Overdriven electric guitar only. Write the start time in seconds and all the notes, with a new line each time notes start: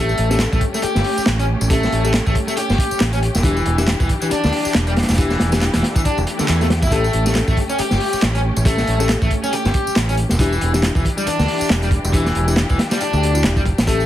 Already playing: A3
0.31 A3
0.53 A3
0.75 A3
0.83 G4
1.39 C#4
1.70 A3
2.05 A3
2.26 A3
2.48 A3
2.57 G4
3.13 C#4
3.44 E3
3.79 E3
4.00 E3
4.22 E3
4.31 D4
4.87 G3
5.18 E3
5.53 E3
5.74 E3
5.96 E3
6.05 D4
6.39 D3
6.48 E3
6.61 A3
6.83 E4
6.92 A3
7.26 A3
7.48 A3
7.70 C#4
7.79 G4
8.35 C#4
8.66 A3
9.01 A3
9.22 A3
9.44 C#4
9.53 G4
10.09 C#4
10.40 E3
10.74 E3
10.96 E3
11.17 G3
11.27 D4
11.83 G3
12.14 E3
12.48 E3
12.70 E3
12.91 G3
13.01 D4
13.56 G3
13.88 A3